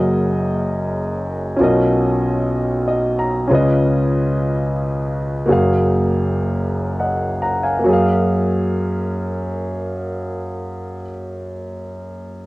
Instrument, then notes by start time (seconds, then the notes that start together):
grand piano
Already playing: F#1 F#2 A#3 F#4 G#4 D#5
1.56 B1 B2 C#4 F4
1.61 A#4 D#5
2.88 D#5
3.19 A#5
3.48 C#2 C#3 C#4 F4
3.52 B4 D#5
5.46 F#1 F#2 A#3 F#4
5.50 G#4 F5
7.00 D#5 F#5
7.42 F#5 A#5
7.63 F5 G#5
7.79 A#3
7.84 F#2 F#4
7.89 G#4
7.93 F5